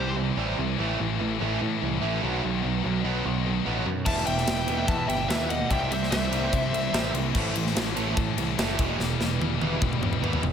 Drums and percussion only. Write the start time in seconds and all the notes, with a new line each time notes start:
4.06 kick, crash
4.17 snare
4.27 ride
4.38 snare
4.47 snare, ride
4.68 ride
4.88 kick, ride
5.09 ride
5.30 snare, ride
5.50 ride
5.71 kick, ride
5.92 ride
6.03 snare
6.12 snare, ride
6.33 ride
6.53 kick, ride
6.74 ride
6.94 snare, ride
7.15 ride
7.35 kick, crash
7.55 ride
7.67 snare
7.76 snare, ride
7.97 ride
8.17 kick, ride
8.38 ride
8.59 snare, ride
8.79 kick, ride
9.00 snare
9.21 snare
9.41 high tom
9.62 high tom
9.82 kick, mid tom
9.93 mid tom
10.03 mid tom
10.13 mid tom
10.24 mid tom
10.33 floor tom
10.43 floor tom